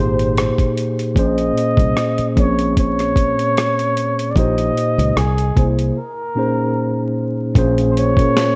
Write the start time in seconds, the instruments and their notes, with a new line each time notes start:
Already playing: fingered electric bass G#1, tine electric piano A#2 A#3 D#4 G4, muted trumpet C5
0.00 tine electric piano G#4 C5
0.19 closed hi-hat
0.37 cross-stick, closed hi-hat
0.58 kick, closed hi-hat
0.77 closed hi-hat
0.99 closed hi-hat
1.15 fingered electric bass A#1, tine electric piano A#2 A#3 C#4 G#4 C5, kick, closed hi-hat
1.20 muted trumpet D#5
1.38 closed hi-hat
1.57 closed hi-hat
1.77 fingered electric bass C2, kick, closed hi-hat
1.97 cross-stick, closed hi-hat
2.18 muted fingered electric bass stroke, closed hi-hat
2.35 fingered electric bass A#1, tine electric piano A#2 A#3 C4 G#4 C#5, muted trumpet C#5, kick, closed hi-hat
2.44 tine electric piano C#4
2.59 closed hi-hat
2.77 muted trumpet C#5, kick, closed hi-hat
2.99 cross-stick, closed hi-hat
3.16 kick, closed hi-hat
3.39 closed hi-hat
3.57 cross-stick, closed hi-hat
3.79 closed hi-hat
3.97 closed hi-hat
4.19 closed hi-hat
4.31 muted trumpet D5
4.35 fingered electric bass A#1, tine electric piano A#2 A#3 D#4 G4 C5, muted trumpet D#5, kick, closed hi-hat
4.58 closed hi-hat
4.77 closed hi-hat
4.98 fingered electric bass C#2, closed hi-hat
5.16 fingered electric bass C2, muted trumpet G#4, cross-stick, closed hi-hat
5.38 closed hi-hat
5.54 fingered electric bass C2, tine electric piano C3 A#3 E4 G#4, kick, closed hi-hat
5.58 tine electric piano C5
5.79 closed hi-hat
5.98 muted trumpet A#4
6.35 tine electric piano A#2 A#3 C#4 D#4 G#4 C5
7.55 fingered electric bass A#1, tine electric piano A#2 A#3 C#4 G#4 C5, kick, closed hi-hat
7.78 closed hi-hat
7.91 muted trumpet C5
7.97 muted trumpet C#5, closed hi-hat
8.17 tine electric piano A#2 A#3 C#4 G#4, kick, closed hi-hat
8.21 tine electric piano A#4
8.37 snare, closed hi-hat